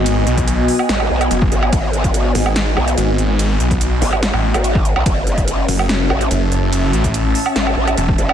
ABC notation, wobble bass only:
X:1
M:4/4
L:1/16
Q:1/4=144
K:G#phr
V:1 name="Wobble bass" clef=bass
z8 A,,,2 B,,,2 z2 G,,,2 | G,,,6 z4 B,,,2 z4 | z6 G,,,3 z2 G,,,4 B,,, | F,,,6 z4 A,,,2 z4 |
z8 G,,,2 A,,,2 z2 F,,,2 |]